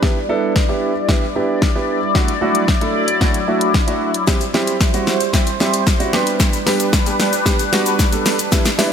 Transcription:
0.00 2.11 G3 medium
0.00 0.17 B3 medium
0.00 0.17 D4 medium
0.00 0.17 E4 medium
0.00 6.09 E4 medium
0.00 0.17 G4 medium
0.00 4.23 D5 medium
0.00 kick loud
0.00 snare medium
0.29 0.51 B3 medium
0.29 0.51 D4 medium
0.29 0.51 E4 medium
0.29 0.51 A4 loud
0.56 kick loud
0.56 snare medium
0.69 0.91 B3 medium
0.69 0.91 D4 medium
0.69 0.91 E4 medium
0.69 0.91 G4 medium
1.09 1.23 B3 medium
1.09 1.23 D4 medium
1.09 1.24 E4 medium
1.09 1.24 G4 medium
1.09 kick loud
1.09 snare medium
1.35 1.57 B3 medium
1.35 1.57 D4 medium
1.35 1.57 E4 medium
1.35 1.58 G4 medium
1.62 kick loud
1.62 snare medium
1.75 1.97 B3 medium
1.75 1.97 D4 medium
1.75 1.97 E4 medium
1.75 1.97 G4 medium
2.15 4.25 F#3 medium
2.15 2.30 A3 medium
2.15 2.30 D4 medium
2.15 2.30 E4 medium
2.15 2.30 F#4 medium
2.15 kick loud
2.15 snare medium
2.28 closed hi-hat soft
2.41 2.63 A3 medium
2.41 2.63 D4 medium
2.41 2.64 E4 medium
2.41 2.64 F#4 loud
2.55 closed hi-hat medium
2.68 kick loud
2.68 snare medium
2.81 3.03 A3 medium
2.81 3.03 D4 medium
2.81 3.03 E4 medium
2.81 3.03 A4 medium
2.81 closed hi-hat soft
3.08 closed hi-hat medium
3.21 3.36 A3 medium
3.21 3.36 D4 medium
3.21 3.36 E4 medium
3.21 3.36 F#4 medium
3.21 kick loud
3.21 snare medium
3.34 closed hi-hat medium
3.48 3.70 A3 medium
3.48 3.70 D4 medium
3.48 3.70 E4 medium
3.48 3.70 F#4 medium
3.61 closed hi-hat medium
3.74 kick loud
3.74 snare medium
3.87 4.09 A3 medium
3.87 4.09 D4 medium
3.87 4.10 E4 medium
3.87 4.10 F#4 medium
3.87 closed hi-hat soft
4.14 closed hi-hat medium
4.27 4.42 G3 medium
4.27 8.48 G3 medium
4.27 4.42 C4 medium
4.27 4.42 E4 medium
4.27 4.42 G4 loud
4.27 6.12 C5 medium
4.27 kick loud
4.27 snare medium
4.27 shaker medium
4.41 closed hi-hat medium
4.41 shaker medium
4.54 4.76 G3 medium
4.54 4.76 C4 medium
4.54 4.76 E4 medium
4.54 4.76 G4 loud
4.54 snare medium
4.67 closed hi-hat medium
4.67 shaker soft
4.81 kick loud
4.81 snare medium
4.81 shaker medium
4.93 5.16 G3 medium
4.93 5.16 C4 medium
4.93 5.16 E4 medium
4.93 5.16 F#4 loud
4.93 closed hi-hat soft
4.93 shaker medium
5.07 snare medium
5.07 shaker soft
5.20 closed hi-hat medium
5.20 shaker medium
5.33 5.48 G3 medium
5.33 5.48 C4 medium
5.33 5.48 E4 medium
5.33 5.48 G4 medium
5.33 kick loud
5.33 snare medium
5.33 shaker medium
5.47 closed hi-hat medium
5.47 shaker soft
5.60 5.82 G3 medium
5.60 5.82 C4 medium
5.60 5.82 E4 medium
5.60 5.82 G4 medium
5.60 snare medium
5.60 shaker medium
5.73 closed hi-hat medium
5.73 shaker medium
5.87 kick loud
5.87 snare medium
5.87 shaker medium
6.00 6.12 G3 medium
6.00 6.13 C4 medium
6.00 6.13 E4 medium
6.00 6.13 F#4 medium
6.00 closed hi-hat soft
6.00 shaker medium
6.13 6.56 G3 medium
6.13 6.56 B3 medium
6.13 6.56 D4 medium
6.13 8.50 D4 medium
6.13 6.56 G4 loud
6.13 8.50 B4 medium
6.13 snare medium
6.27 closed hi-hat medium
6.27 shaker soft
6.40 kick loud
6.40 snare medium
6.40 shaker medium
6.53 closed hi-hat medium
6.53 shaker medium
6.53 shaker soft
6.66 6.88 G3 medium
6.66 6.88 B3 medium
6.66 6.88 D4 medium
6.66 6.89 G4 loud
6.66 snare loud
6.66 open hi-hat medium
6.66 shaker medium
6.80 closed hi-hat medium
6.80 shaker soft
6.80 shaker medium
6.93 kick loud
6.93 snare medium
6.93 shaker medium
7.06 7.28 G3 medium
7.06 7.28 B3 medium
7.06 7.28 D4 medium
7.06 7.28 G4 loud
7.06 closed hi-hat soft
7.06 shaker medium
7.06 shaker soft
7.20 snare medium
7.20 open hi-hat medium
7.20 shaker soft
7.33 closed hi-hat medium
7.33 shaker medium
7.46 7.60 G3 medium
7.46 7.61 B3 medium
7.46 7.61 D4 medium
7.46 7.61 G4 medium
7.46 kick loud
7.46 snare medium
7.46 shaker medium
7.59 closed hi-hat medium
7.59 shaker medium
7.72 7.94 G3 medium
7.72 7.94 B3 medium
7.72 7.95 D4 medium
7.72 7.95 F#4 medium
7.72 snare loud
7.72 open hi-hat medium
7.72 shaker medium
7.86 closed hi-hat medium
7.86 shaker medium
7.99 kick loud
7.99 snare medium
7.99 shaker medium
8.12 8.34 G3 medium
8.12 8.34 B3 medium
8.12 8.34 D4 medium
8.12 8.35 A4 medium
8.12 closed hi-hat medium
8.12 shaker medium
8.26 snare medium
8.26 open hi-hat medium
8.26 shaker medium
8.39 closed hi-hat medium
8.39 shaker medium
8.52 8.67 G3 medium
8.52 8.93 G3 medium
8.52 8.67 B3 medium
8.52 8.67 D4 medium
8.52 8.93 E4 medium
8.52 8.67 E4 medium
8.52 8.93 D5 medium
8.52 kick loud
8.52 snare loud
8.52 shaker medium
8.65 snare loud
8.65 closed hi-hat medium
8.65 shaker medium
8.78 8.93 G3 medium
8.78 8.93 B3 medium
8.78 8.93 D4 medium
8.78 8.93 E4 loud
8.78 snare loud
8.78 open hi-hat medium
8.78 shaker medium

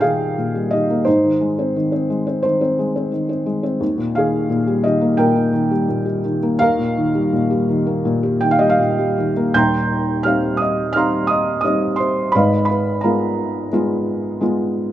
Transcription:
0.00 1.02 D#2 soft
0.00 0.38 A#2 medium
0.00 0.72 D#3 soft
0.00 0.84 A#3 soft
0.00 1.02 D#4 soft
0.00 0.72 G4 soft
0.00 0.02 G#4 medium
0.00 0.67 G#4 medium
0.00 1.08 A#4 medium
0.00 0.71 D#5 medium
0.00 1.08 F5 medium
0.00 1.08 G5 medium
0.38 1.04 A#2 soft
0.55 1.05 G3 soft
0.71 1.05 D#3 soft
0.71 1.04 G4 soft
0.71 1.07 D#5 medium
0.90 1.06 A#3 soft
1.05 3.78 G#2 soft
1.05 2.41 D#4 medium
1.05 2.40 C5 medium
1.24 1.75 D#3 soft
1.41 2.08 G#3 soft
1.59 1.90 C4 soft
1.76 2.43 D#3 soft
1.92 2.25 C4 soft
2.10 2.77 G#3 soft
2.27 2.60 C4 soft
2.43 3.10 D#3 medium
2.43 3.09 D#4 soft
2.43 3.08 C5 medium
2.61 2.94 C4 soft
2.79 3.45 G#3 soft
2.96 3.28 C4 soft
3.12 3.79 D#3 soft
3.29 3.62 C4 soft
3.46 3.80 G#3 soft
3.63 3.80 C4 soft
3.80 6.56 D#2 medium
3.98 4.48 A#2 soft
4.15 4.83 D#3 soft
4.15 4.82 G#4 medium
4.15 4.86 F5 medium
4.49 5.17 A#2 medium
4.67 5.69 G3 medium
4.83 5.51 D#3 soft
4.83 5.17 G4 medium
4.83 5.16 D#5 medium
5.01 6.38 A#3 soft
5.17 5.87 A#2 medium
5.17 6.21 A#4 medium
5.17 6.20 G5 medium
5.35 6.57 D#4 medium
5.53 6.23 D#3 soft
5.71 6.04 G3 soft
5.88 6.58 A#2 soft
6.05 6.58 G3 soft
6.24 6.59 D#3 soft
6.43 6.60 A#3 medium
6.59 9.49 D#2 medium
6.59 8.37 A#4 medium
6.59 8.36 F5 medium
6.79 7.31 A#2 soft
6.97 7.68 D#3 soft
7.15 7.49 G3 soft
7.33 8.04 A#2 medium
7.51 8.59 G3 medium
7.69 8.41 D#3 medium
7.87 9.32 A#3 medium
8.05 8.77 A#2 medium
8.23 9.50 G4 medium
8.41 9.16 D#3 soft
8.41 8.50 G5 medium
8.51 8.60 F5 medium
8.59 8.97 G3 medium
8.59 8.69 D#5 medium
8.69 8.79 F5 medium
8.79 9.51 A#2 soft
8.99 9.52 G3 soft
9.17 9.53 D#3 soft
9.37 9.54 A#3 medium
9.53 12.30 D#1 medium
9.53 12.30 D#2 medium
9.53 10.23 G5 medium
9.53 10.22 A#5 medium
9.53 10.22 C6 medium
9.53 10.21 G6 medium
10.23 10.93 G3 soft
10.23 10.93 C4 soft
10.23 10.93 D#4 soft
10.23 10.58 F5 medium
10.23 10.60 F6 medium
10.57 10.95 D#6 medium
10.62 10.93 D#5 medium
10.93 11.62 G3 soft
10.93 11.62 C4 soft
10.93 11.63 D#4 soft
10.93 11.28 F5 medium
10.93 11.28 A#5 medium
10.93 11.26 F6 medium
10.97 11.28 C6 medium
11.27 11.62 D#5 medium
11.27 11.59 D#6 medium
11.61 12.32 G3 soft
11.61 12.32 C4 soft
11.61 11.98 D#6 medium
11.65 12.32 D#4 soft
11.65 11.97 D#5 medium
11.96 12.33 C6 medium
12.00 12.32 C5 medium
12.32 14.92 G#1 medium
12.32 14.92 G#2 medium
12.32 12.67 B4 medium
12.32 12.67 D#5 medium
12.32 12.67 F5 medium
12.32 12.64 B5 medium
12.65 12.99 B5 medium
12.69 13.01 B4 medium
13.01 13.70 G#3 soft
13.01 13.70 B3 soft
13.01 13.70 F4 medium
13.01 13.68 A#4 soft
13.01 13.68 F5 soft
13.01 13.67 A#5 medium
13.73 14.39 G#3 soft
13.73 14.39 B3 soft
13.73 14.39 F4 medium
14.41 14.92 G#3 soft
14.41 14.92 B3 soft
14.41 14.92 F4 soft

